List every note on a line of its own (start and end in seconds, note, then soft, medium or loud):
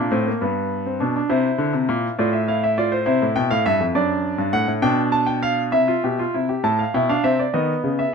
0.00 0.10 D4 medium
0.00 0.37 A4 medium
0.12 0.30 A2 medium
0.12 0.25 C4 medium
0.27 0.41 A#3 medium
0.41 0.98 G2 medium
0.41 0.84 B3 medium
0.41 1.26 B4 medium
0.86 1.00 C4 medium
1.00 1.18 B2 medium
1.00 1.14 D4 medium
1.16 1.29 D4 medium
1.29 1.47 C3 medium
1.29 2.14 E4 medium
1.29 2.14 C5 medium
1.58 1.72 D3 medium
1.73 1.87 C3 medium
1.89 2.06 A#2 medium
2.19 3.03 A2 medium
2.19 2.36 F4 medium
2.19 2.32 D5 medium
2.33 2.46 E5 medium
2.48 2.66 E4 medium
2.48 2.61 F5 medium
2.64 2.76 E5 medium
2.78 2.95 F4 medium
2.78 2.91 D5 medium
2.92 3.04 C5 medium
3.06 3.20 C3 medium
3.06 3.91 E4 medium
3.06 3.24 C5 medium
3.22 3.35 A2 medium
3.36 3.49 B2 medium
3.36 3.49 G5 medium
3.51 3.64 A2 medium
3.51 3.64 F5 medium
3.66 3.79 G2 medium
3.66 3.83 E5 loud
3.80 3.94 F2 medium
3.95 4.37 F#2 medium
3.95 4.80 D4 medium
3.95 4.52 D5 medium
4.38 4.52 G2 medium
4.53 4.66 A2 medium
4.53 4.71 F#5 loud
4.68 4.82 A2 medium
4.82 5.70 B2 medium
4.82 5.70 D4 medium
4.82 5.01 G5 loud
5.12 5.26 A5 medium
5.26 5.41 G5 medium
5.43 5.61 F5 loud
5.72 5.91 C3 medium
5.72 5.87 E4 medium
5.72 6.60 E5 medium
5.88 6.02 F4 medium
6.04 6.22 B2 medium
6.04 6.18 G4 medium
6.19 6.33 F4 medium
6.34 6.53 C3 medium
6.34 6.48 E4 medium
6.49 6.63 G4 medium
6.64 6.82 A2 medium
6.64 6.82 A4 medium
6.64 6.78 A5 medium
6.79 6.93 F5 medium
6.94 7.13 B2 medium
6.94 7.08 E4 medium
6.94 7.08 G5 medium
7.09 7.23 D4 medium
7.09 7.23 F5 medium
7.24 7.42 C3 medium
7.24 7.42 C4 medium
7.24 7.38 E5 medium
7.39 7.53 D5 medium
7.54 7.72 D#3 medium
7.54 8.12 B3 medium
7.54 7.97 D#5 medium
7.84 8.02 C#3 medium
7.99 8.13 E5 medium